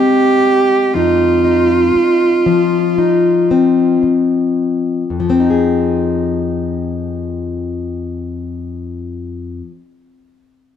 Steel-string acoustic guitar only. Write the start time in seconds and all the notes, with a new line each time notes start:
Already playing: G#3 C4 D#4
0.95 F2 D#4
1.45 D#4
1.95 muted steel-string acoustic guitar stroke
2.46 F3
2.98 D#4
3.51 C4
4.03 muted steel-string acoustic guitar stroke
5.10 F2
5.20 F3
5.30 C4
5.40 D#4
5.50 G#4